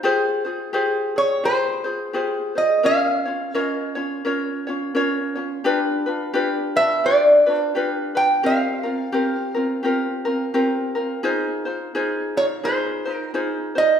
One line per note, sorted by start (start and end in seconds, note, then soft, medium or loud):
0.03 0.45 F4 medium
0.03 0.44 G4 medium
0.03 0.45 G#4 medium
0.03 0.43 C5 loud
0.45 0.73 F4 soft
0.45 0.73 G#4 soft
0.45 0.73 C5 medium
0.73 1.15 F4 medium
0.73 1.15 G4 medium
0.73 1.15 G#4 medium
0.73 1.16 C5 medium
1.16 1.43 F4 soft
1.16 1.43 G#4 soft
1.16 1.45 C#5 medium
1.43 1.85 F4 medium
1.43 1.84 G4 soft
1.43 1.84 G#4 medium
1.43 1.83 C5 medium
1.43 2.10 C5 medium
1.84 2.13 F4 soft
1.84 2.13 G#4 soft
1.84 2.13 C5 medium
2.13 2.55 F4 medium
2.13 2.55 G4 medium
2.13 2.55 G#4 medium
2.13 2.54 C5 medium
2.55 2.83 F4 soft
2.55 2.84 G#4 soft
2.55 2.83 C5 soft
2.55 2.85 D#5 medium
2.83 3.25 C#4 medium
2.83 3.25 F4 medium
2.83 3.25 A#4 medium
2.83 3.24 C#5 medium
2.83 3.60 F5 loud
3.25 3.54 C#4 soft
3.25 3.54 F4 soft
3.25 3.54 C#5 medium
3.54 3.96 C#4 medium
3.54 3.95 F4 medium
3.54 3.95 A#4 medium
3.54 3.94 C#5 medium
3.60 3.92 D#5 loud
3.95 4.24 C#4 medium
3.95 4.24 F4 soft
3.95 4.23 C#5 medium
4.25 4.66 C#4 medium
4.25 4.66 F4 medium
4.25 4.65 A#4 medium
4.25 4.66 C#5 medium
4.67 4.94 C#4 soft
4.67 4.94 F4 medium
4.67 4.94 C#5 medium
4.95 5.36 C#4 medium
4.95 5.36 F4 medium
4.95 5.35 A#4 medium
4.95 5.34 C#5 medium
5.35 5.64 C#4 soft
5.35 5.64 F4 medium
5.35 5.64 C#5 medium
5.64 6.06 D4 medium
5.64 6.06 F4 medium
5.64 6.05 G4 medium
5.64 6.05 B4 loud
6.06 6.33 D4 soft
6.06 6.34 F4 medium
6.06 6.34 B4 medium
6.34 6.75 D4 medium
6.34 6.76 F4 medium
6.34 6.75 G4 medium
6.34 6.74 B4 medium
6.76 7.03 D4 soft
6.76 7.04 F4 soft
6.76 7.04 B4 medium
6.76 7.05 E5 loud
7.04 7.45 D4 medium
7.04 7.46 F4 medium
7.04 7.45 G4 soft
7.04 7.45 B4 medium
7.04 7.54 D5 medium
7.46 7.74 D4 soft
7.46 7.74 F4 soft
7.46 7.74 B4 medium
7.54 7.70 C5 medium
7.75 8.16 D4 medium
7.75 8.15 F4 medium
7.75 8.16 G4 medium
7.75 8.14 B4 medium
8.15 8.43 D4 soft
8.15 8.42 F4 soft
8.15 8.43 B4 soft
8.15 8.45 G5 medium
8.43 8.85 C4 medium
8.43 8.84 F4 medium
8.43 8.85 G4 medium
8.43 8.82 A#4 medium
8.43 9.52 F5 medium
8.83 9.12 C4 soft
8.83 9.12 F4 soft
8.83 9.13 A#4 soft
9.12 9.55 C4 medium
9.12 9.55 F4 medium
9.12 9.54 G4 medium
9.12 9.53 A#4 medium
9.54 9.83 C4 soft
9.54 9.83 F4 medium
9.54 9.83 A#4 medium
9.83 10.25 C4 medium
9.83 10.25 F4 medium
9.83 10.25 G4 medium
9.83 10.24 A#4 medium
10.25 10.53 C4 soft
10.25 10.53 F4 soft
10.25 10.53 A#4 medium
10.54 10.95 C4 medium
10.54 10.95 F4 medium
10.54 10.95 G4 medium
10.54 10.94 A#4 medium
10.95 11.23 C4 soft
10.95 11.23 F4 soft
10.95 11.24 A#4 medium
11.23 11.65 D#4 medium
11.23 11.65 F4 medium
11.23 11.65 G#4 medium
11.23 11.64 C5 medium
11.65 11.94 D#4 soft
11.65 11.94 F4 soft
11.65 11.94 C5 soft
11.95 12.36 D#4 medium
11.95 12.36 F4 medium
11.95 12.36 G#4 medium
11.95 12.36 C5 medium
12.37 12.63 D#4 soft
12.37 12.63 F4 soft
12.37 12.45 C#5 loud
12.63 13.05 D#4 medium
12.63 13.06 F4 medium
12.63 13.05 G#4 medium
12.63 13.14 C5 medium
12.63 13.04 C5 medium
13.05 13.33 D#4 soft
13.05 13.34 F4 soft
13.05 13.34 C5 medium
13.14 13.30 A#4 medium
13.34 13.76 D#4 medium
13.34 13.75 F4 medium
13.34 13.75 G#4 medium
13.34 13.74 C5 medium
13.75 14.00 D#4 soft
13.75 14.00 F4 soft
13.75 14.00 C5 soft
13.75 14.00 D#5 medium